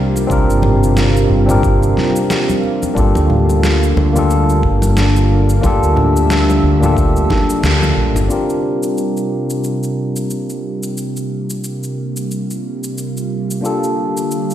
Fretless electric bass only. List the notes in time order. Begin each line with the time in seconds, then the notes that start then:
Already playing: C2
0.30 C2
0.49 G1
1.30 G1
2.97 G1
3.16 D2
3.97 D2
4.63 G1
5.63 G1
5.83 D2
6.64 D2
7.63 D2
7.97 A#1
8.16 G1